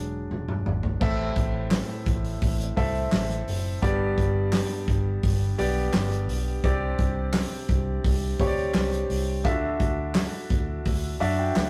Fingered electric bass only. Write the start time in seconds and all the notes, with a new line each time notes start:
Already playing: E1
0.30 E1
0.66 G#1
1.01 A1
1.37 A1
2.07 A1
2.42 A1
2.77 C2
3.12 A1
3.47 F#1
3.83 G1
4.18 G1
4.88 G1
5.23 G1
5.59 B1
5.94 G1
6.29 B1
6.64 C2
6.99 C2
7.69 C2
8.05 C2
8.40 D2
8.74 C2
9.10 C2
9.45 D2
9.80 D2
10.51 D2
10.86 D2
11.21 F#2
11.56 D2